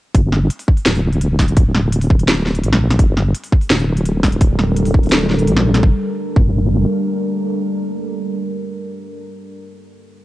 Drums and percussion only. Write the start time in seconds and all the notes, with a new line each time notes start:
0.15 kick, closed hi-hat
0.33 snare
0.50 closed hi-hat
0.59 open hi-hat
0.68 kick
0.77 open hi-hat
0.86 snare, closed hi-hat
0.95 open hi-hat
1.13 closed hi-hat
1.21 closed hi-hat
1.39 kick, snare, open hi-hat
1.48 closed hi-hat
1.57 kick, closed hi-hat
1.75 snare
1.92 closed hi-hat
2.01 open hi-hat
2.10 kick
2.19 closed hi-hat
2.28 snare, closed hi-hat
2.46 snare
2.55 closed hi-hat
2.63 closed hi-hat
2.73 snare
2.90 snare, closed hi-hat
2.99 kick, closed hi-hat
3.17 snare
3.34 closed hi-hat
3.43 open hi-hat
3.52 kick
3.61 open hi-hat
3.70 snare, closed hi-hat
3.79 open hi-hat
3.97 closed hi-hat
4.05 closed hi-hat
4.23 kick, snare, open hi-hat
4.32 closed hi-hat
4.41 kick, closed hi-hat
4.59 snare
4.76 closed hi-hat
4.85 open hi-hat
4.94 kick
5.03 closed hi-hat
5.06 closed hi-hat
5.09 snare, closed hi-hat
5.12 closed hi-hat
5.30 snare
5.39 closed hi-hat
5.47 closed hi-hat
5.56 snare
5.74 snare, closed hi-hat
5.83 kick
6.36 kick